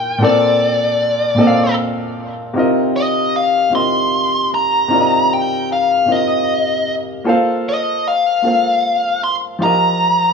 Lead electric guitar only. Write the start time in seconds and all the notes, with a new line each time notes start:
Already playing: G5
0.25 D5
2.96 D#5
3.36 F5
3.75 C6
4.54 A#5
5.33 G5
5.73 F5
6.12 D#5
7.69 D#5
8.08 F5
9.24 C6
9.63 A#5